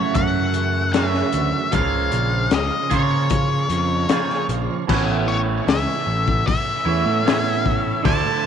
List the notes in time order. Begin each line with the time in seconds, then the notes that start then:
Already playing: F#2 C#3 E3 A3 C#4 E4 F#4 A4 C#5
0.15 F#2 F#5, kick, closed hi-hat
0.54 closed hi-hat
0.93 F#2 C#3 E3 A3 C#4 F#4 E5, snare, closed hi-hat
1.14 snare
1.32 D2, closed hi-hat
1.71 C#2 C#3 F3 A#3 C#4 F4 G#4 A#4 F5, kick, closed hi-hat
2.12 A#1, closed hi-hat
2.51 C#2 D#5, snare, closed hi-hat
2.90 C#3 F3 A#3 F4 G#4 C#5, kick, closed hi-hat
3.30 kick, closed hi-hat
3.69 F2, closed hi-hat
4.09 C#3 F3 A#3 F4 G#4, snare, closed hi-hat
4.30 snare
4.49 A#1, closed hi-hat
4.87 A1 A2 E3 B3 C#4 E4 A4 B4, kick, crash
5.28 C#5
5.67 C#2 E5, snare, open hi-hat
6.07 A1
6.28 kick
6.47 E5, kick, open hi-hat
6.85 E2 A2 E3 B3 C#4 E4
7.06 A2
7.24 A2 E3 B3 C#4 E4, open hi-hat
7.28 snare
7.66 kick
8.03 D2 D3 F3 A3 D4 E4 D5 A5, kick, open hi-hat